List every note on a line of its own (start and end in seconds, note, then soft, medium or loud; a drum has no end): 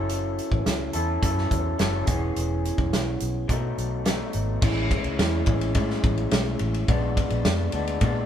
0.00 0.38 F#1 medium
0.00 0.95 F#3 soft
0.00 0.95 C#4 medium
0.00 0.94 E4 medium
0.00 0.92 A4 medium
0.09 closed hi-hat medium
0.39 closed hi-hat medium
0.52 0.63 A1 medium
0.52 kick medium
0.66 0.89 C#2 medium
0.66 snare medium
0.66 closed hi-hat medium
0.93 1.17 E2 medium
0.93 1.21 C#4 soft
0.93 1.22 E4 soft
0.93 1.22 A4 medium
0.93 closed hi-hat medium
1.22 1.45 F#2 medium
1.22 1.77 F#3 medium
1.22 1.78 C#4 medium
1.22 1.78 E4 medium
1.22 1.79 A4 medium
1.22 kick medium
1.22 closed hi-hat medium
1.38 snare soft
1.51 1.74 E2 medium
1.51 kick medium
1.51 closed hi-hat medium
1.78 2.02 F#1 medium
1.78 2.07 F#3 medium
1.78 2.07 C#4 medium
1.78 2.07 E4 medium
1.78 2.06 A4 medium
1.78 snare loud
1.78 closed hi-hat medium
2.06 2.30 E1 medium
2.06 3.48 E3 medium
2.06 3.49 B3 medium
2.06 3.49 C#4 medium
2.06 3.48 G#4 medium
2.06 kick loud
2.06 closed hi-hat medium
2.36 2.70 E1 loud
2.36 closed hi-hat medium
2.65 closed hi-hat medium
2.78 2.90 E1 medium
2.78 kick medium
2.93 3.15 B1 medium
2.93 snare medium
2.93 closed hi-hat medium
3.20 3.44 B1 medium
3.20 closed hi-hat medium
3.48 4.03 B2 medium
3.48 3.72 B2 loud
3.48 4.04 F#3 medium
3.48 4.05 A3 medium
3.48 4.05 D#4 medium
3.48 kick medium
3.48 closed hi-hat medium
3.78 4.23 B1 medium
3.78 closed hi-hat medium
4.04 4.61 B2 medium
4.04 4.62 F#3 medium
4.04 4.62 A3 medium
4.04 4.63 D#4 medium
4.04 snare loud
4.04 closed hi-hat medium
4.33 4.57 G#1 medium
4.33 closed hi-hat medium
4.62 4.96 A1 loud
4.62 5.17 A2 medium
4.62 5.19 G#3 medium
4.62 5.19 C#4 medium
4.62 5.19 E4 loud
4.62 kick loud
4.62 crash medium
4.91 kick medium
4.91 ride medium
5.04 5.16 C#2 medium
5.04 ride soft
5.18 5.41 E2 loud
5.18 5.47 A2 medium
5.18 5.47 G#3 medium
5.18 5.46 C#4 medium
5.18 5.45 E4 medium
5.18 snare loud
5.18 ride medium
5.46 5.77 A1 medium
5.46 5.74 G#3 soft
5.46 5.75 C#4 medium
5.46 5.75 E4 medium
5.46 kick loud
5.46 ride medium
5.61 ride medium
5.74 6.87 A2 medium
5.74 5.98 A2 medium
5.74 6.87 G#3 loud
5.74 6.88 C#4 loud
5.74 6.89 E4 loud
5.74 kick medium
5.74 ride medium
5.90 snare soft
6.04 6.26 A1 medium
6.04 kick medium
6.04 ride medium
6.17 ride soft
6.31 6.54 B1 medium
6.31 snare loud
6.31 ride medium
6.59 6.83 A1 medium
6.59 ride medium
6.74 ride soft
6.88 7.22 A#1 loud
6.88 7.73 A#2 medium
6.88 7.73 G#3 medium
6.88 7.73 B3 loud
6.88 7.72 D4 medium
6.88 kick loud
6.88 ride medium
7.17 kick medium
7.17 ride medium
7.30 7.42 A#1 medium
7.30 ride soft
7.45 7.68 F2 medium
7.45 snare loud
7.45 ride medium
7.72 7.96 D2 medium
7.72 8.01 G#3 soft
7.72 8.02 B3 medium
7.72 8.01 D4 medium
7.72 ride medium
7.87 ride medium
8.01 8.24 A#2 loud
8.01 8.26 A#2 medium
8.01 8.26 G#3 loud
8.01 8.26 B3 medium
8.01 8.26 D4 loud
8.01 kick medium
8.01 ride medium